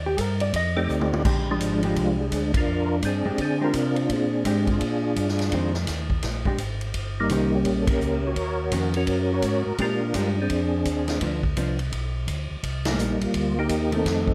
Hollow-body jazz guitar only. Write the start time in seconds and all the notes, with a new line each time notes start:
0.06 G4
0.20 A#4
0.41 D5
0.56 D#5
1.25 G#3 D4 G4
1.84 G#3 D4 G4
3.25 G#3 D4 G4
3.61 G#3 D4 G4
4.46 G#3 D4 G4
5.53 D#3 G#3 C4
6.46 G#3 D4 G4
7.31 D#3 C#4 G4 C5
8.72 D#3 A#3 C#4 F#4
9.79 G#3 D4 G4
10.15 G#3 D4 G4
11.22 F3 B3 D4
11.57 F3 B3 D4
13.92 D#3 A3